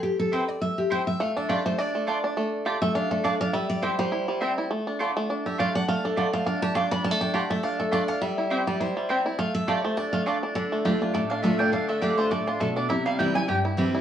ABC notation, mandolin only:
X:1
M:4/4
L:1/8
Q:"Swing" 1/4=205
K:Dm
V:1 name="Mandolin"
z2 [CEcg] z3 [CEcg] z | z2 [A,Fda] z3 [A,Fda] z | z2 [A,Fda] z3 [A,Fda] z | z2 [CEcg] z3 [CEcg] z |
z2 [A,Fda] z3 [A,Fda] z | z2 [A,Fda] z3 [A,Fda] z | z2 [A,Fda] z3 [A,Fda] z | z2 [CEcg] z3 [CEcg] z |
z2 [A,Fda] z3 [A,Fda] z | z4 d f e g | f e d c d F A d | e f g ^g =g z3 |]